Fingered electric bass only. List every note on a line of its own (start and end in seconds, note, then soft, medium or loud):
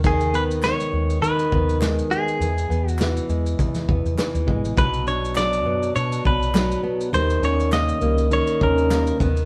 0.00 0.72 D#2 loud
0.93 1.17 D#2 loud
1.22 1.47 D#3 loud
1.52 2.00 D#2 loud
2.40 2.65 E2 loud
2.70 3.19 E2 loud
3.29 3.53 E2 medium
3.75 3.86 E3 medium
3.89 4.02 E2 medium
4.05 4.16 E2 medium
4.35 4.45 D#2 medium
4.48 4.61 G#1 loud
4.64 4.75 A1 medium
4.77 5.66 B1 loud
5.66 5.90 F#2 loud
5.96 6.20 B2 loud
6.25 6.74 B1 medium
7.14 7.38 D#2 loud
7.43 7.91 D#2 loud
8.02 8.40 C#2 medium
8.61 9.10 D#2 loud
9.20 9.45 D#2 loud